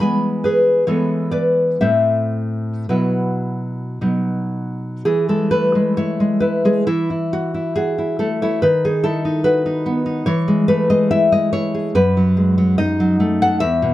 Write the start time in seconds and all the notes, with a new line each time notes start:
Already playing: E3
0.00 G#3 B3 G#5 B5
0.44 G#4 B4
0.87 E3 G#3 B3 A4 C#5
1.31 B4 D5
1.81 A2 A3 C4 C5 E5
2.89 B2 F#3 E4 F#4 B4
4.01 B2 F#3 D#4
5.05 E3 G#4
5.29 G#3 A4
5.51 A3 B4
5.75 G#3
5.97 E4 C#5
6.20 G#3
6.40 E4 B4
6.65 G#3 G#4
6.87 E3 E4
7.10 E4
7.33 F#4
7.54 E4
7.76 F#4 G#4
7.98 E4
8.19 A3 A4
8.42 E4 C#5
8.62 D#3 B4
8.85 D#4 G#4
9.04 E4 A4
9.25 D#4
9.44 F#4 B4
9.66 D#4
9.86 B3
10.06 D#4
10.26 E3 C#5
10.48 G#3
10.68 A3 B4
10.90 G#3 D#5
11.11 E4 E5
11.32 G#3 D#5
11.53 E4 C#5
11.74 G#4
11.95 F#2 B4
12.17 F#3
12.37 G#3
12.58 F#3
12.78 D#4 D#5
13.00 F#3
13.20 A3
13.42 A4 F#5
13.60 E2 E5
13.82 B2